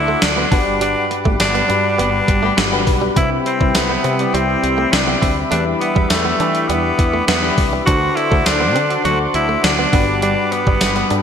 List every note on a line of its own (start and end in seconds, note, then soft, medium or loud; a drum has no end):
0.00 0.14 D2 loud
0.00 0.54 D3 medium
0.00 0.52 D4 medium
0.00 0.22 E4 loud
0.00 0.52 F#4 medium
0.00 0.49 A4 medium
0.00 0.54 A4 medium
0.00 0.54 C5 medium
0.00 3.12 F#5 medium
0.00 0.50 C6 medium
0.00 3.13 D6 medium
0.08 0.17 A3 medium
0.22 0.44 D2 loud
0.22 0.77 D4 loud
0.22 muted clean electric guitar stroke soft
0.22 snare loud
0.22 closed hi-hat medium
0.22 tambourine medium
0.37 0.46 B3 medium
0.52 0.94 G1 loud
0.52 1.36 G2 medium
0.52 7.83 G3 medium
0.52 0.61 D4 medium
0.52 1.46 D4 medium
0.52 1.46 F#4 medium
0.52 1.46 G4 medium
0.52 1.46 B4 medium
0.52 3.14 B5 medium
0.52 kick loud
0.52 open hi-hat medium
0.81 0.90 G3 medium
0.81 1.09 D4 medium
0.81 closed hi-hat loud
1.11 muted clean electric guitar stroke soft
1.11 closed hi-hat medium
1.25 1.36 G1 loud
1.25 1.34 A3 medium
1.25 kick medium
1.40 1.61 G1 medium
1.40 1.95 D4 loud
1.40 muted clean electric guitar stroke soft
1.40 snare loud
1.40 closed hi-hat loud
1.40 tambourine medium
1.55 1.64 B3 medium
1.55 closed hi-hat soft
1.68 2.00 G2 medium
1.68 2.33 D4 medium
1.68 1.78 D4 medium
1.68 2.33 F#4 medium
1.68 2.33 G4 medium
1.68 2.34 B4 medium
1.68 closed hi-hat medium
1.98 2.20 G1 loud
1.98 2.07 B3 medium
1.98 2.12 B3 medium
1.98 2.84 D4 loud
1.98 2.12 G4 medium
1.98 2.12 B4 medium
1.98 closed hi-hat medium
2.28 2.49 G1 medium
2.28 muted clean electric guitar stroke soft
2.28 kick medium
2.28 closed hi-hat medium
2.43 2.52 A3 medium
2.43 2.56 B3 medium
2.43 2.56 G4 medium
2.43 2.56 B4 medium
2.57 2.87 G1 loud
2.57 2.66 G3 medium
2.57 snare loud
2.57 closed hi-hat medium
2.57 tambourine medium
2.72 3.14 B3 medium
2.72 3.00 D4 medium
2.72 3.00 F#4 medium
2.72 3.14 G4 medium
2.72 3.00 G4 medium
2.72 3.14 B4 loud
2.72 3.00 B4 medium
2.72 muted clean electric guitar stroke soft
2.87 3.08 B1 medium
2.87 kick loud
2.87 open hi-hat medium
3.02 3.11 G3 medium
3.16 3.38 C2 loud
3.16 4.01 C3 medium
3.16 3.25 C4 medium
3.16 3.44 C4 medium
3.16 3.44 E4 medium
3.16 3.30 E4 medium
3.16 3.44 G4 medium
3.16 3.45 B4 medium
3.16 7.83 E5 medium
3.16 5.49 G5 medium
3.16 7.83 B5 medium
3.16 kick loud
3.16 closed hi-hat loud
3.46 3.76 C4 medium
3.46 muted clean electric guitar stroke soft
3.46 closed hi-hat medium
3.61 3.71 C2 medium
3.61 3.69 G3 medium
3.61 3.97 C4 medium
3.61 3.97 E4 medium
3.61 3.98 G4 medium
3.61 3.98 B4 medium
3.61 kick medium
3.75 3.96 C2 medium
3.75 4.36 B3 medium
3.75 muted clean electric guitar stroke soft
3.75 snare loud
3.75 closed hi-hat loud
3.75 tambourine medium
3.90 3.99 B3 medium
4.04 4.26 C3 loud
4.04 4.13 C4 medium
4.04 closed hi-hat medium
4.19 4.93 C4 medium
4.19 4.93 E4 medium
4.19 4.93 G4 medium
4.19 4.93 D5 medium
4.19 closed hi-hat soft
4.34 4.55 C2 loud
4.34 4.43 G3 medium
4.34 4.94 C4 medium
4.34 closed hi-hat medium
4.63 4.85 C2 loud
4.63 muted clean electric guitar stroke soft
4.63 closed hi-hat medium
4.78 4.87 A3 medium
4.92 5.14 C2 loud
4.92 5.37 D4 medium
4.92 muted clean electric guitar stroke soft
4.92 snare loud
4.92 closed hi-hat medium
4.92 tambourine medium
5.07 5.16 B3 medium
5.22 5.44 D2 medium
5.22 5.31 C4 medium
5.22 kick medium
5.22 open hi-hat medium
5.51 5.73 E2 loud
5.51 6.36 E3 medium
5.51 5.60 A3 medium
5.51 5.65 D4 medium
5.51 6.07 D4 medium
5.51 6.07 E4 medium
5.51 6.07 G4 medium
5.51 6.07 B4 medium
5.51 9.89 D6 medium
5.51 closed hi-hat medium
5.80 6.11 B3 medium
5.80 muted clean electric guitar stroke soft
5.80 closed hi-hat medium
5.96 6.07 E2 medium
5.96 6.05 G3 medium
5.96 kick medium
6.10 6.32 E2 loud
6.10 6.70 A3 medium
6.10 muted clean electric guitar stroke soft
6.10 snare loud
6.10 closed hi-hat loud
6.10 tambourine medium
6.25 6.34 B3 medium
6.40 6.71 E3 loud
6.40 7.04 D4 medium
6.40 6.49 D4 medium
6.40 7.04 E4 medium
6.40 7.04 G4 medium
6.40 7.05 B4 medium
6.40 closed hi-hat medium
6.55 closed hi-hat medium
6.68 6.90 E2 loud
6.68 6.79 G3 medium
6.68 7.27 B3 loud
6.68 closed hi-hat medium
6.99 7.20 E2 loud
6.99 muted clean electric guitar stroke soft
6.99 kick medium
6.99 closed hi-hat medium
7.14 7.23 A3 medium
7.27 7.49 E2 loud
7.27 7.69 B3 medium
7.27 7.37 B3 medium
7.27 snare loud
7.27 closed hi-hat medium
7.27 tambourine medium
7.42 7.70 D4 medium
7.42 7.70 E4 medium
7.42 7.70 G4 medium
7.42 7.71 B4 medium
7.42 muted clean electric guitar stroke soft
7.58 7.79 C2 loud
7.58 kick loud
7.58 open hi-hat medium
7.73 7.82 G3 medium
7.86 8.08 D2 loud
7.86 8.71 D3 medium
7.86 8.14 D4 medium
7.86 7.96 D4 medium
7.86 8.18 F#4 loud
7.86 8.15 F#4 medium
7.86 9.91 A4 medium
7.86 8.15 A4 medium
7.86 8.15 C5 medium
7.86 11.22 F#5 medium
7.86 9.90 C6 medium
7.86 kick loud
7.86 closed hi-hat loud
8.16 8.47 E4 loud
8.16 muted clean electric guitar stroke soft
8.16 closed hi-hat medium
8.31 8.42 D2 medium
8.31 8.40 A3 medium
8.31 8.67 D4 medium
8.31 8.68 F#4 medium
8.31 8.68 A4 medium
8.31 8.68 C5 medium
8.31 kick medium
8.46 8.75 D2 medium
8.46 9.04 D4 loud
8.46 muted clean electric guitar stroke soft
8.46 snare loud
8.46 closed hi-hat loud
8.46 tambourine medium
8.60 8.69 B3 medium
8.75 8.96 D3 loud
8.75 8.84 C4 medium
8.75 closed hi-hat medium
8.90 9.63 D4 medium
8.90 9.63 F#4 medium
8.90 9.63 A4 medium
8.90 9.64 D5 medium
8.90 closed hi-hat soft
9.05 9.26 D2 loud
9.05 9.14 F#3 medium
9.05 9.18 F#4 loud
9.05 closed hi-hat medium
9.34 9.55 D2 loud
9.34 9.65 E4 loud
9.34 muted clean electric guitar stroke soft
9.34 closed hi-hat medium
9.49 9.58 A3 medium
9.63 9.85 D2 loud
9.63 10.22 D4 loud
9.63 muted clean electric guitar stroke soft
9.63 snare loud
9.63 closed hi-hat medium
9.63 tambourine medium
9.79 9.88 B3 medium
9.93 10.35 G1 loud
9.93 10.77 G2 medium
9.93 11.22 G3 medium
9.93 10.02 B3 medium
9.93 10.87 D4 medium
9.93 10.87 F#4 medium
9.93 10.87 G4 medium
9.93 10.88 B4 medium
9.93 11.22 B5 medium
9.93 11.22 D6 medium
9.93 kick loud
9.93 open hi-hat medium
10.22 10.32 G3 medium
10.22 10.54 D4 loud
10.22 closed hi-hat loud
10.52 11.13 B3 medium
10.52 muted clean electric guitar stroke soft
10.52 closed hi-hat medium
10.67 10.77 G1 medium
10.67 10.76 G3 medium
10.67 kick medium
10.81 11.02 G1 medium
10.81 muted clean electric guitar stroke soft
10.81 snare loud
10.81 closed hi-hat loud
10.81 tambourine medium
10.96 11.05 B3 medium
10.96 closed hi-hat soft
11.10 11.22 G2 medium
11.10 11.22 D4 medium
11.10 11.20 D4 medium
11.10 11.22 F#4 medium
11.10 11.22 G4 medium
11.10 11.22 A4 medium
11.10 closed hi-hat medium